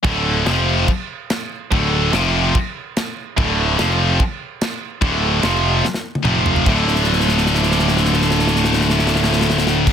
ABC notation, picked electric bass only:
X:1
M:4/4
L:1/8
Q:1/4=145
K:Dm
V:1 name="Picked electric bass" clef=bass
D,,,2 F,,,2 z4 | D,,,2 F,,,2 z4 | D,,,2 F,,,2 z4 | D,,,2 F,,,2 z2 F,,,2 |
D,,,8- | D,,,8 |]